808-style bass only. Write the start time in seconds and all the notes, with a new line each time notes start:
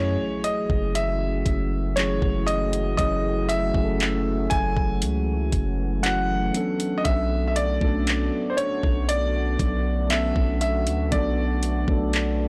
Already playing: F#2
0.70 F#1
1.46 F#1
2.22 F#1
2.99 F#1
3.75 F#1
4.52 F#1
5.03 C#2
5.53 F#1
7.06 B1
7.82 B1
8.84 B1
9.60 B1
10.36 B1
10.87 D2
11.12 B1
11.88 B1